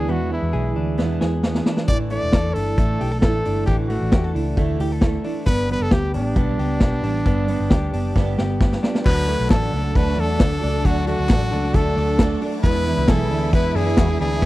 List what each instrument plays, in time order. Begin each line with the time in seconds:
Already playing: clean electric guitar D4 G#4, trumpet G#4
0.08 twelve-string acoustic guitar E2 B2 E3 G#3 D4 E4, picked electric bass E2, clean electric guitar B3, trumpet F#4
0.30 twelve-string acoustic guitar E3 G#3 D4 E4, clean electric guitar B3, trumpet E4
0.42 picked electric bass E2
0.52 picked electric bass B1, twelve-string acoustic guitar E3 G#3 D4 E4, clean electric guitar G#4
0.75 picked electric bass D2, twelve-string acoustic guitar E3 G#3 D4 E4
0.97 twelve-string acoustic guitar E2 B2 E3 G#3 D4 E4, picked electric bass E2, clean electric guitar B3, snare
1.20 picked electric bass E2, twelve-string acoustic guitar E3 G#3 D4 E4, clean electric guitar G#4, snare
1.42 twelve-string acoustic guitar E3 G#3 D4 E4, clean electric guitar B3, snare
1.55 snare
1.66 twelve-string acoustic guitar E3 G#3 D4 E4, snare
1.77 snare
1.88 picked electric bass A1, twelve-string acoustic guitar A2 D3 A3 D4 E4, clean electric guitar E3, trumpet D5, kick, closed hi-hat
2.10 twelve-string acoustic guitar A3 D4 E4, trumpet D5, open hi-hat
2.23 picked electric bass E1
2.32 picked electric bass E2, twelve-string acoustic guitar D3 A3 D4 E4, clean electric guitar A4, kick, snare, closed hi-hat
2.54 picked electric bass G1, twelve-string acoustic guitar A3 D4 E4, trumpet A4, open hi-hat
2.78 picked electric bass A1, twelve-string acoustic guitar A2 D3 A3 D4 E4, kick, closed hi-hat
3.00 picked electric bass B1, twelve-string acoustic guitar A3 D4 E4, clean electric guitar G4, open hi-hat
3.12 clean electric guitar A4
3.21 picked electric bass A1, twelve-string acoustic guitar D3 A3 D4, trumpet A4, kick, snare, closed hi-hat
3.25 twelve-string acoustic guitar E4
3.45 picked electric bass G1, twelve-string acoustic guitar A3 D4 E4, open hi-hat
3.66 picked electric bass A1, twelve-string acoustic guitar A2 D3 A3 D4 E4, clean electric guitar E3, trumpet G4, kick, closed hi-hat
3.87 twelve-string acoustic guitar D4 E4, trumpet F#4, open hi-hat
3.92 twelve-string acoustic guitar A3
4.02 picked electric bass A1
4.12 picked electric bass E2, twelve-string acoustic guitar D3 A3 D4 E4, clean electric guitar G4, kick, snare, closed hi-hat
4.24 clean electric guitar A4
4.34 picked electric bass C#2, twelve-string acoustic guitar A3 D4 E4, open hi-hat
4.57 picked electric bass D2, twelve-string acoustic guitar A2 D3 A3 D4 E4, kick, closed hi-hat
4.79 picked electric bass D2, twelve-string acoustic guitar A3 D4 E4, clean electric guitar G4, open hi-hat
4.92 clean electric guitar A4
5.01 twelve-string acoustic guitar D3 A3 D4 E4, kick, snare, closed hi-hat
5.24 twelve-string acoustic guitar A3 D4 E4, open hi-hat
5.46 picked electric bass G1, twelve-string acoustic guitar G2 D3 G3 B3 D4 G4, trumpet B4, kick, closed hi-hat
5.69 twelve-string acoustic guitar G3 B3 D4 G4, trumpet B4, open hi-hat
5.80 picked electric bass F#1, trumpet A4
5.91 picked electric bass D2, twelve-string acoustic guitar G3 B3 D4 G4, trumpet G4, kick, snare, closed hi-hat
6.14 picked electric bass A1, twelve-string acoustic guitar G3 B3 D4 G4, trumpet D4, open hi-hat
6.35 picked electric bass B1, twelve-string acoustic guitar G2 D3 G3 B3 D4 G4, kick, closed hi-hat
6.57 picked electric bass C#2, twelve-string acoustic guitar G3 D4 G4, open hi-hat
6.80 picked electric bass B1, twelve-string acoustic guitar G3 B3 D4 G4, kick, snare, closed hi-hat
7.02 picked electric bass A1, twelve-string acoustic guitar G3 B3 D4 G4, open hi-hat
7.25 picked electric bass G1, twelve-string acoustic guitar G2 D3 G3 B3 D4 G4, kick, closed hi-hat
7.47 twelve-string acoustic guitar G3 B3 D4 G4, open hi-hat
7.60 picked electric bass G1
7.69 picked electric bass D2, twelve-string acoustic guitar G3 B3 D4 G4, kick, snare, closed hi-hat
7.92 picked electric bass F#1, twelve-string acoustic guitar G3 B3 D4 G4, open hi-hat
8.15 picked electric bass G1, twelve-string acoustic guitar G2 D3 G3 B3 D4 G4, kick, snare
8.37 picked electric bass G1, twelve-string acoustic guitar G3 B3 D4 G4, snare
8.60 twelve-string acoustic guitar G3 B3 D4 G4, kick, snare
8.72 snare
8.83 twelve-string acoustic guitar G3 B3 D4 G4, snare
8.95 snare
9.04 picked electric bass D2, twelve-string acoustic guitar D3 A3 D4 F#4, clean electric guitar F#3, violin section D4, string machine A4 D5 F#5 D6, trumpet B4, kick, crash
9.28 twelve-string acoustic guitar A3 D4 F#4, open hi-hat
9.39 picked electric bass B1
9.50 picked electric bass A1, twelve-string acoustic guitar D3 A3 D4 F#4, clean electric guitar A4, trumpet A4, kick, snare, clap, hi-hat pedal, ride
9.72 picked electric bass C#2, twelve-string acoustic guitar A3 D4 F#4, open hi-hat
9.95 picked electric bass D2, twelve-string acoustic guitar D3 A3 D4 F#4, trumpet B4, kick, hi-hat pedal, ride
10.17 picked electric bass E2, twelve-string acoustic guitar A3 D4 F#4, trumpet A4, open hi-hat
10.39 picked electric bass D2, twelve-string acoustic guitar D3 A3 D4 F#4, clean electric guitar A4, kick, snare, clap, hi-hat pedal, ride
10.61 picked electric bass C#2, twelve-string acoustic guitar A3 D4 F#4, open hi-hat
10.84 picked electric bass D2, twelve-string acoustic guitar D3 A3 D4 F#4, clean electric guitar F#3, trumpet F#4, kick, hi-hat pedal, ride
11.07 twelve-string acoustic guitar A3 D4 F#4, trumpet F#4, open hi-hat
11.19 picked electric bass D2
11.29 picked electric bass A1, twelve-string acoustic guitar D3 A3 D4 F#4, clean electric guitar A4, kick, snare, clap, hi-hat pedal, ride
11.51 picked electric bass C#2, twelve-string acoustic guitar A3 D4 F#4, open hi-hat
11.74 picked electric bass D2, twelve-string acoustic guitar D3 A3 D4 F#4, trumpet A4, kick, hi-hat pedal, ride
11.97 picked electric bass D2, twelve-string acoustic guitar A3 D4 F#4, open hi-hat
12.19 twelve-string acoustic guitar D3 A3 D4 F#4, clean electric guitar A4, kick, snare, clap, hi-hat pedal, ride
12.42 twelve-string acoustic guitar A3 D4 F#4, open hi-hat
12.63 picked electric bass E2, twelve-string acoustic guitar E2 B2 E3 G#3 D4 E4, clean electric guitar B3, violin section E4, trumpet B4, string machine B4 E5 G#5, kick, hi-hat pedal, ride
12.86 twelve-string acoustic guitar E3 G#3 D4 E4, clean electric guitar B3, open hi-hat
12.97 picked electric bass C#2
13.08 picked electric bass B1, twelve-string acoustic guitar E2 B2 E3 G#3 D4 E4, clean electric guitar G#4, trumpet A4, kick, snare, clap, hi-hat pedal, ride
13.30 picked electric bass D2, twelve-string acoustic guitar E3 G#3 D4 E4, open hi-hat
13.52 picked electric bass E2, twelve-string acoustic guitar E3 G#3 D4 E4, clean electric guitar B3, trumpet B4, kick, hi-hat pedal, ride
13.75 picked electric bass F#2, twelve-string acoustic guitar E3 G#3 D4 E4, trumpet G#4, open hi-hat
13.97 twelve-string acoustic guitar E2 B2 E3 G#3 D4 E4, picked electric bass E2, clean electric guitar F#4, kick, snare, clap, hi-hat pedal, ride
14.09 clean electric guitar G#4
14.19 picked electric bass D2, twelve-string acoustic guitar E3 G#3 D4 E4, trumpet G#4, open hi-hat
14.41 twelve-string acoustic guitar E2 B2 E3 G#3, kick, hi-hat pedal, ride